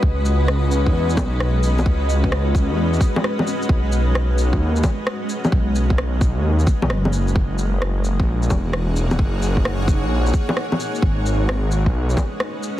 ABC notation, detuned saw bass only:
X:1
M:4/4
L:1/16
Q:"Swing 16ths" 1/4=131
K:Bmix
V:1 name="Detuned saw bass" clef=bass
C,,6- C,, E,,3 B,,,6 | C,,6- C,, E,,3 z6 | B,,,6- B,,, D,,3 z6 | B,,,6- B,,, D,,3 z B,,, F,,,4 |
F,,,6- F,,, ^A,,,3 E,,,6 | F,,,6- F,,, ^A,,,3 z6 | G,,,6- G,,, B,,,3 z6 |]